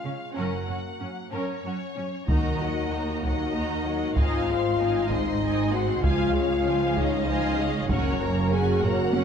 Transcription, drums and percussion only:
2.28 taiko
3.24 taiko
4.17 taiko
5.10 taiko
6.04 taiko
6.97 taiko
7.89 taiko
8.82 taiko low-mid
9.13 taiko high

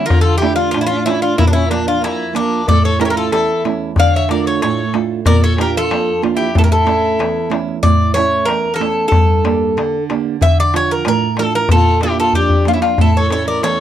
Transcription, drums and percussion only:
0.10 darbuka dum
0.42 darbuka tek
0.74 darbuka tek
0.90 darbuka tek
1.07 darbuka tek
1.39 darbuka dum
1.55 darbuka tek
1.71 darbuka tek
2.04 darbuka tek
2.35 darbuka tek
2.68 darbuka dum
3.00 darbuka tek
3.32 darbuka tek
3.49 darbuka tek
3.65 darbuka tek
3.96 darbuka dum
4.29 darbuka tek
4.62 darbuka tek
4.77 darbuka tek
4.94 darbuka tek
5.26 darbuka dum
5.58 darbuka tek
5.91 darbuka tek
6.08 darbuka tek
6.24 darbuka tek
6.55 darbuka dum
6.87 darbuka tek
7.20 darbuka tek
7.51 darbuka tek
7.68 darbuka tek
7.83 darbuka dum
8.16 darbuka tek
8.48 darbuka tek
8.65 darbuka tek
8.81 darbuka tek
9.12 darbuka dum
9.45 darbuka tek
9.78 darbuka tek
10.10 darbuka tek
10.41 darbuka dum
10.74 darbuka tek
11.05 darbuka tek
11.22 darbuka tek
11.37 darbuka tek
11.69 darbuka dum
12.01 darbuka tek
12.18 darbuka tek
12.33 darbuka dum
12.50 darbuka dum
12.65 darbuka tek
12.82 darbuka tek
12.98 darbuka dum
13.30 darbuka tek
13.63 darbuka tek

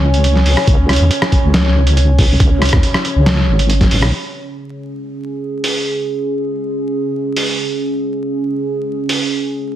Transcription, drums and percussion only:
0.14 closed hi-hat
0.24 closed hi-hat
0.35 snare
0.46 open hi-hat
0.57 cross-stick
0.67 kick, closed hi-hat
0.89 cross-stick, closed hi-hat
0.93 closed hi-hat
0.96 closed hi-hat
1.11 closed hi-hat
1.22 cross-stick
1.32 kick, closed hi-hat
1.54 snare, closed hi-hat
1.87 closed hi-hat
1.97 closed hi-hat
2.19 kick, open hi-hat
2.40 kick, closed hi-hat
2.62 cross-stick, closed hi-hat
2.65 closed hi-hat
2.69 closed hi-hat
2.73 kick, cross-stick
2.83 closed hi-hat
2.94 cross-stick
3.05 closed hi-hat
3.26 snare, closed hi-hat
3.59 closed hi-hat
3.70 closed hi-hat
3.81 kick, snare, closed hi-hat
3.91 open hi-hat
4.02 cross-stick
5.64 open hi-hat
7.36 open hi-hat
9.09 open hi-hat

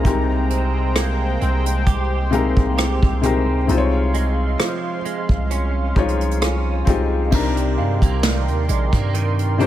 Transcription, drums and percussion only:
0.05 kick, closed hi-hat
0.50 closed hi-hat
0.96 cross-stick, closed hi-hat
1.41 closed hi-hat
1.66 closed hi-hat
1.87 kick, closed hi-hat
2.32 closed hi-hat
2.57 kick
2.78 cross-stick, closed hi-hat
3.03 kick
3.23 closed hi-hat
3.69 closed hi-hat
4.14 closed hi-hat
4.59 cross-stick, closed hi-hat
5.05 closed hi-hat
5.29 kick
5.51 closed hi-hat
5.96 kick, closed hi-hat
6.08 closed hi-hat
6.21 closed hi-hat
6.31 closed hi-hat
6.41 cross-stick, closed hi-hat
6.87 kick, closed hi-hat
7.32 kick, crash
7.57 closed hi-hat
8.02 kick, closed hi-hat
8.23 snare, closed hi-hat
8.48 closed hi-hat
8.69 closed hi-hat
8.93 kick, closed hi-hat
9.14 closed hi-hat
9.39 closed hi-hat
9.60 closed hi-hat

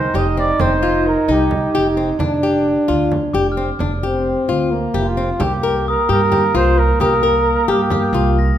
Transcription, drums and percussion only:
0.14 frame drum
0.59 frame drum
0.82 frame drum
1.51 frame drum
1.74 frame drum
2.20 frame drum
2.42 frame drum
3.12 frame drum
3.35 frame drum
3.80 frame drum
4.03 frame drum
5.40 frame drum
6.32 frame drum
7.00 frame drum
7.90 frame drum

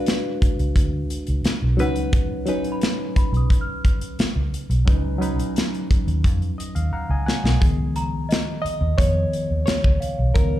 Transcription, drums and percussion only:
0.06 snare, closed hi-hat
0.42 kick, closed hi-hat
0.59 closed hi-hat
0.76 kick, closed hi-hat
1.10 closed hi-hat
1.27 closed hi-hat
1.45 snare, closed hi-hat
1.79 closed hi-hat
1.96 closed hi-hat
2.13 kick, closed hi-hat
2.46 closed hi-hat
2.64 closed hi-hat
2.81 snare, closed hi-hat
3.16 kick, closed hi-hat
3.34 closed hi-hat
3.50 kick, closed hi-hat
3.85 kick, closed hi-hat
4.01 closed hi-hat
4.19 snare, closed hi-hat
4.54 closed hi-hat
4.71 closed hi-hat
4.88 kick, closed hi-hat
5.22 closed hi-hat
5.39 closed hi-hat
5.56 snare, closed hi-hat
5.74 closed hi-hat
5.91 kick, closed hi-hat
6.08 closed hi-hat
6.24 kick, closed hi-hat
6.42 closed hi-hat
6.60 closed hi-hat
6.76 closed hi-hat
7.28 snare
7.45 snare
7.62 kick, closed hi-hat
7.96 closed hi-hat
8.31 snare, closed hi-hat
8.66 closed hi-hat
8.98 kick, closed hi-hat
9.33 closed hi-hat
9.67 snare, closed hi-hat
9.84 kick
10.02 closed hi-hat
10.35 kick, closed hi-hat

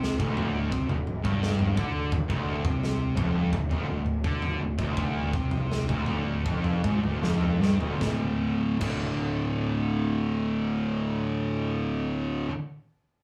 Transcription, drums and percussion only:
0.04 snare
0.20 kick
0.37 floor tom, mid tom
0.72 kick
0.89 floor tom
1.07 mid tom
1.24 kick, mid tom
1.43 snare
1.59 floor tom
1.77 kick
2.12 kick, floor tom
2.30 kick
2.65 kick, floor tom
2.83 snare
3.17 kick, floor tom
3.53 kick
3.71 floor tom
4.06 mid tom
4.24 kick
4.42 floor tom
4.79 kick
4.97 kick, floor tom
5.33 kick
5.51 floor tom
5.72 snare
5.89 kick
6.06 floor tom, mid tom
6.46 kick
6.64 floor tom
6.84 kick, mid tom
7.04 mid tom
7.23 snare
7.41 floor tom
7.62 snare
7.81 floor tom
8.01 kick, snare
8.81 kick, crash

